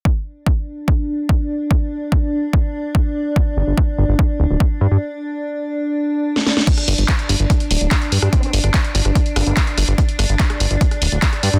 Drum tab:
CC |----------------|----------------|----------------|----------------|
HH |----------------|----------------|----------------|----------------|
CP |----------------|----------------|----------------|----------------|
SD |----------------|----------------|----------------|-------------ooo|
BD |o---o---o---o---|o---o---o---o---|o---o---o---o---|----------------|

CC |x---------------|----------------|----------------|
HH |xxoxxxoxxxoxxxox|xxoxxxoxxxoxxxox|xxoxxxoxxxoxxxox|
CP |----x-------x---|----x-------x---|----x-------x---|
SD |-r--r---r---r--r|---r---r--r---r-|--r--r---r---r--|
BD |o---o---o---o---|o---o---o---o---|o---o---o---o---|